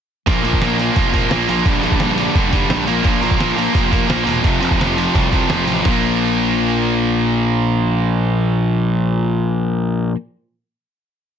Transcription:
0.27 A#1 A#2 F3 A#3, kick, open hi-hat
0.44 A#1 A#2 F3 A#3, open hi-hat
0.53 kick
0.62 A#1 A#2 F3 A#3, snare, open hi-hat
0.79 A#2 F3 A#3, open hi-hat
0.95 F1 A#2 F3 A#3, kick, open hi-hat
1.13 A#2 F3 A#3, kick, open hi-hat
1.31 A#1 A#2 F3 A#3, snare, open hi-hat
1.48 A#1 A#2 F3 A#3, open hi-hat
1.65 A#1 G2 D3 G3, kick, open hi-hat
1.81 A#1 G2 D3, open hi-hat
1.85 G3
1.92 kick
1.99 A#1 G2 D3, snare, open hi-hat
2.03 G3
2.18 G2 D3 G3, open hi-hat
2.35 F1 G2 D3 G3, kick, open hi-hat
2.53 G2 D3 G3, kick, open hi-hat
2.69 A#1 G2 D3 G3, snare, open hi-hat
2.86 A#1 A#2 F3 A#3, open hi-hat
3.04 A#1 A#2 F3 A#3, kick, open hi-hat
3.22 A#1 A#2 F3 A#3, open hi-hat
3.31 kick
3.39 A#1 A#2 F3 A#3, snare, open hi-hat
3.58 A#2 F3 A#3, open hi-hat
3.74 F1 A#2 F3 A#3, kick, open hi-hat
3.91 A#2 F3 A#3, kick, open hi-hat
4.09 A#1 A#2 F3 A#3, snare, open hi-hat
4.26 E1 A#2 F3 A#3, open hi-hat
4.43 F1 F2 C3 F3, kick, open hi-hat
4.61 F1 F2 C3 F3, open hi-hat
4.71 kick
4.78 F1 F2 C3 F3, snare, open hi-hat
4.98 F2 C3 F3, open hi-hat
5.14 C2 F2 C3 F3, kick, open hi-hat
5.32 F2 C3 F3, kick, open hi-hat
5.49 F1 F2 C3 F3, snare, open hi-hat
5.67 A1 F2 C3 F3, open hi-hat
5.84 A#1 A#2 F3 A#3, kick, snare, open hi-hat

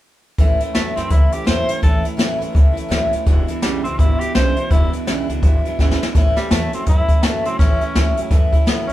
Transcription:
0.38 A1 A2 E3 A3 C#4 E4, kick, closed hi-hat
0.60 A2 E3 A3 C#4 E4, muted upright bass stroke, closed hi-hat
0.74 E2 A2 E3 F#3 A3 C#4 E4, snare, closed hi-hat
0.96 F#2 A2 E3 A3 C4 C#4 E4, snare, closed hi-hat
1.09 C#2 A2 E3 A3 C#4 E4, kick, closed hi-hat
1.31 A2 E3 A3 C#4 E4 G4, muted upright bass stroke, closed hi-hat
1.45 E2 A2 E3 F#3 A3 C#4 E4 C5, snare, closed hi-hat
1.68 A2 E3 A3 C#4 E4, muted upright bass stroke, closed hi-hat
1.81 A1 A2 E3 A3 C#4 E4 A4, kick, closed hi-hat
2.04 A2 E3 A3 C#4 E4, muted upright bass stroke, closed hi-hat
2.17 E2 A2 E3 F#3 A3 C#4 E4, snare, closed hi-hat
2.38 F#2 A2 E3 A3 C#4 E4, closed hi-hat
2.52 C#2 A2 E3 A3 C#4 E4, kick, closed hi-hat
2.57 E3
2.73 A3 C#4 E4, closed hi-hat
2.77 A2 E3
2.89 D2 A2 E3 A3 C#4 E4, kick, snare, closed hi-hat
2.93 F#3
3.11 A2 A3 C#4 E4, muted upright bass stroke, closed hi-hat
3.15 E3
3.26 E1 E2 B2 E3 G#3 D4 E4, kick, closed hi-hat
3.47 E2 B2 E3 G#3 D4 E4, closed hi-hat
3.62 B1 E2 B2 C#3 E3 G3 G#3 D4 E4, snare, closed hi-hat
3.84 C#2 E2 B2 E3 G#3 C4 D4 E4, closed hi-hat
3.98 G#1 E2 B2 E3 G#3 D4 E4, kick, closed hi-hat
4.19 E2 B2 G#3 D4 E4 G4, closed hi-hat
4.24 E3
4.34 B1 E2 B2 C#3 E3 G#3 D4 E4 C5, snare, closed hi-hat
4.56 E2 B2 E3 G#3 D4 E4, muted upright bass stroke, closed hi-hat
4.71 E1 E2 B2 E3 G#3 D4 E4, kick, closed hi-hat
4.92 E2 B2 E3 G#3 D4 E4, muted upright bass stroke, closed hi-hat
5.07 B1 E2 B2 C#3 E3 G#3 D4 E4, snare, closed hi-hat
5.29 C#2 E2 B2 E3 G#3 D4 E4, closed hi-hat
5.42 G#1 E2 B2 E3 G#3 D4, kick, closed hi-hat
5.46 E4
5.64 E2 B2 G#3 D4 E4, muted upright bass stroke, closed hi-hat
5.69 E3
5.79 G#1 E2 B2 C#3 E3 G#3 D4 E4, kick, snare
5.91 snare
6.01 E2 B2 E3 G#3 D4 E4, snare
6.14 A1 A2 E3 A3 C#4 E4, kick, snare, closed hi-hat
6.36 A2 E3 G3 C#4 E4, muted upright bass stroke, snare, closed hi-hat
6.41 A3
6.51 E2 A2 E3 F#3 A3 C#4 E4, snare, closed hi-hat
6.73 A2 F#3 C4 C#4 E4, muted upright bass stroke, closed hi-hat
6.77 A3
6.86 F#2 A2 E3 A3 E4, kick, closed hi-hat
6.91 C#4 E4
7.08 A2 E3 E4, kick, closed hi-hat
7.13 A3 C#4
7.23 F#2 A2 E3 F#3 A3, snare, closed hi-hat
7.27 C#4 E4
7.45 C#2 A2 F#3 C4 C#4 E4, closed hi-hat
7.49 A3
7.59 A1 A2 E3 A3 C#4 E4, kick, snare, closed hi-hat
7.81 A2 E3 A3 C#4 E4, closed hi-hat
7.95 D2 A2 E3 F#3 A3 C#4 E4, snare, closed hi-hat
8.16 A2 F#3 C#4 E4, closed hi-hat
8.21 A3
8.30 F#2 A2 E3 A3 C#4 E4, kick, snare, closed hi-hat
8.52 A2 E3 A3 C#4 E4, muted upright bass stroke, kick, closed hi-hat
8.66 A2 E3 F#3 A3 B3 C#4 E4, snare, closed hi-hat
8.87 D#2 A2 F#3 C#4 E4, closed hi-hat

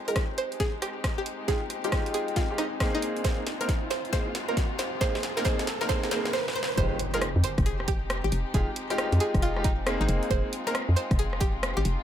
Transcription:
Already playing: G#3 C4 D#4 G4, riser
0.08 G#3 D#4 F4 G#4 A#4, closed hi-hat
0.16 kick, cross-stick, snare, closed hi-hat
0.38 C5, open hi-hat
0.52 closed hi-hat
0.60 G#4, kick, snare, closed hi-hat
0.82 G4, cross-stick, open hi-hat
1.04 kick, cross-stick, snare, closed hi-hat
1.18 G4
1.26 open hi-hat
1.48 G#3 D#4 F4 G4 G#4, kick, snare, closed hi-hat
1.70 cross-stick, open hi-hat
1.84 G#3 D#4 F4 G4, cross-stick, closed hi-hat
1.92 kick, cross-stick, snare, closed hi-hat
2.06 open hi-hat
2.14 G#4, open hi-hat
2.28 closed hi-hat
2.36 F4, kick, snare, closed hi-hat
2.51 G#3 D#4 F4 G4
2.58 D#4, cross-stick, open hi-hat
2.80 A#3 C4 D#4 G#4, kick, cross-stick, snare, closed hi-hat
2.95 D#4
3.02 F4, open hi-hat
3.17 closed hi-hat
3.24 A#3 C4 D#4 G#4 C5, kick, snare, closed hi-hat
3.47 snare, open hi-hat
3.61 A#3 C4 D#4 A#4, closed hi-hat
3.69 kick, snare, closed hi-hat
3.90 C5, snare, open hi-hat
4.05 closed hi-hat
4.13 A#3 C4 D#4 G#4 C5, kick, snare, closed hi-hat
4.35 snare, open hi-hat
4.48 A#3 C4 D#4 A#4
4.57 kick, snare, closed hi-hat
4.79 C5, snare, open hi-hat
5.01 A#3 C4 D#4 G#4 C5, kick, snare, closed hi-hat
5.15 snare
5.23 snare, open hi-hat
5.37 A#3 C4 D#4 A#4, snare, closed hi-hat
5.45 A#3 C4 D#4 G#4 C5, kick, snare, closed hi-hat
5.59 snare, open hi-hat
5.67 snare, open hi-hat
5.81 A#3 C4 D#4 A#4, snare, closed hi-hat
5.89 A#3 C4 D#4 G#4 C5, kick, snare, closed hi-hat
6.03 snare
6.11 A#3 C4 D#4 G#4 C5, snare, open hi-hat
6.25 snare
6.33 C5, snare
6.48 snare
6.55 C5
6.63 snare
6.78 F1 G#3 C4 D#4 F4 G4 C5, kick, closed hi-hat, impact
6.99 open hi-hat
7.14 G#3 D#4 F4 G#4 A#4, cross-stick, closed hi-hat
7.22 cross-stick, closed hi-hat
7.36 F2
7.44 C5, open hi-hat
7.58 F1, kick, cross-stick, closed hi-hat
7.66 G#4, closed hi-hat
7.80 cross-stick
7.88 G4, kick, open hi-hat
8.10 cross-stick, closed hi-hat
8.24 G#1 G4
8.32 F1, open hi-hat
8.54 F1 G#3 D#4 F4 G4 G#4, kick, closed hi-hat
8.76 open hi-hat
8.90 G#3 D#4 F4 G4, cross-stick, closed hi-hat
8.98 cross-stick, closed hi-hat
9.12 F2, open hi-hat
9.20 G#4, open hi-hat
9.34 F1, kick, cross-stick, closed hi-hat
9.42 F4, closed hi-hat
9.56 G#3 D#4 F4 G4, cross-stick
9.64 D#4, kick, open hi-hat
9.86 A#3 C4 D#4 G#4, cross-stick, closed hi-hat
10.01 G#1 D#4
10.09 F1 F4, open hi-hat
10.23 closed hi-hat
10.31 F1 A#3 C4 D#4 G#4 C5, kick, closed hi-hat
10.53 open hi-hat
10.67 A#3 C4 D#4 A#4, cross-stick, closed hi-hat
10.75 cross-stick, closed hi-hat
10.89 F2
10.96 C5, open hi-hat
11.11 F1, kick, cross-stick, closed hi-hat
11.19 G#4, closed hi-hat
11.33 cross-stick
11.40 G4, kick, open hi-hat
11.63 cross-stick, closed hi-hat
11.77 G#1 G4
11.85 F1, open hi-hat

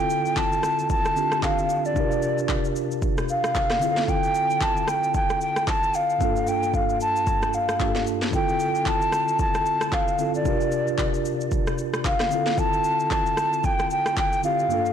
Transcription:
Already playing: D3 C4 E4 F4 A4 G5
0.10 shaker
0.26 shaker
0.37 A5, kick, clap, shaker
0.52 shaker
0.63 cross-stick, shaker
0.79 shaker
0.90 A5, kick, shaker
1.05 cross-stick, shaker
1.16 D3 C4 D4 F4 G4, shaker
1.32 cross-stick, shaker
1.43 F5, kick, clap, shaker
1.59 shaker
1.69 shaker
1.85 D5, shaker
1.94 C3 D4 E4, kick, shaker
1.98 G4 A#4
2.03 F4
2.11 shaker
2.22 shaker
2.38 shaker
2.49 kick, clap, shaker
2.65 shaker
2.76 shaker
2.91 shaker
3.02 kick, shaker
3.18 cross-stick, shaker
3.29 F5, shaker
3.44 cross-stick, shaker
3.55 kick, clap, shaker
3.70 cross-stick, snare, shaker
3.79 D3 C4 E4, shaker
3.84 F4 G#4
3.92 A4
3.97 snare, shaker
4.08 G5, kick, shaker
4.24 shaker
4.35 shaker
4.50 shaker
4.61 A5, kick, clap, shaker
4.77 shaker
4.88 G5, cross-stick, shaker
5.04 shaker
5.14 G5, kick, shaker
5.30 cross-stick, shaker
5.41 G5, shaker
5.56 cross-stick, shaker
5.67 A5, kick, clap, shaker
5.83 shaker
5.94 F5, shaker
6.10 shaker
6.19 G2 A#3 D4, kick, shaker
6.23 F4 A4
6.36 shaker
6.47 G5, shaker
6.63 shaker
6.74 F5, kick, shaker
6.89 shaker
7.01 A5, shaker
7.16 shaker
7.27 kick, shaker
7.42 cross-stick, shaker
7.53 F5, shaker
7.69 cross-stick, shaker
7.79 G2 A#3 D4 F4 G4, kick, clap, shaker
7.89 A4
7.95 snare, shaker
8.07 shaker
8.22 snare, shaker
8.31 D3 C4 E4 G5, kick, shaker
8.35 F4 A4
8.49 shaker
8.60 shaker
8.75 shaker
8.86 A5, kick, clap, shaker
9.02 shaker
9.12 cross-stick, shaker
9.28 shaker
9.39 A5, kick, shaker
9.54 cross-stick, shaker
9.66 shaker
9.81 cross-stick, shaker
9.92 F5, kick, clap, shaker
10.08 shaker
10.18 D3 C4 E4 F4 A4, shaker
10.34 D5, shaker
10.43 C3 D4 F4, kick, shaker
10.48 G4 A#4
10.61 shaker
10.72 shaker
10.87 shaker
10.98 kick, clap, shaker
11.14 shaker
11.25 shaker
11.41 shaker
11.51 kick, shaker
11.67 cross-stick, shaker
11.78 shaker
11.94 cross-stick, shaker
12.05 F5, kick, clap, shaker
12.20 cross-stick, snare, shaker
12.29 D3 C4 E4, shaker
12.34 F4 A4
12.46 snare, shaker
12.58 A5, kick, shaker
12.73 shaker
12.84 shaker
13.00 shaker
13.11 A5, kick, clap, shaker
13.26 shaker
13.37 cross-stick, shaker
13.53 shaker
13.64 G5, kick, shaker
13.79 cross-stick, shaker
13.91 G5, shaker
14.06 cross-stick, shaker
14.17 G5, kick, clap, shaker
14.33 shaker
14.43 D3 C4 E4 F4 G4 F5, shaker
14.59 shaker
14.68 G2 A#3 D4, shaker
14.73 F4 A4
14.86 shaker

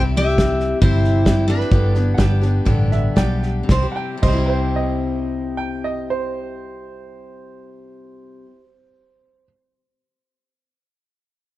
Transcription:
Already playing: C2 C3 G3 C4 E4 G4
0.16 C4 E4 G4 E5, snare
0.38 G3 C4 E4 G4, kick, snare, hi-hat pedal
0.60 snare
0.82 G1 C3 G3 C4 E4 G4 C5, kick, snare
1.04 snare
1.25 G3 C4 E4 G4, kick, snare, hi-hat pedal
1.48 C4 D4 E4 G4 B4, snare
1.60 snare
1.71 G1 G2 D3 G3 B3 D4 G4, kick, snare
1.95 G3 B3 D4 G4, snare
2.14 G1 G3 F#5, kick
2.18 B3 D4 G4 G5, snare, hi-hat pedal
2.41 G3 B3 D4 G4, snare
2.65 A1 G2 D3 G3 B3 D4 G4, kick, snare
2.91 E5, snare
3.16 B1 G3 B3 D4 G4 D5 G5, kick, snare, hi-hat pedal
3.43 snare
3.63 C3
3.69 C2 G3 C5, kick, snare
3.74 C4
3.78 E4
3.83 G4
3.92 F#5
3.96 G5
4.17 C3
4.22 C2 G3 C5 D#5, kick, crash
4.28 C4
4.33 E4 G4
4.46 B4 C5
4.76 D#5
5.57 G5
5.84 D#5
6.10 C5

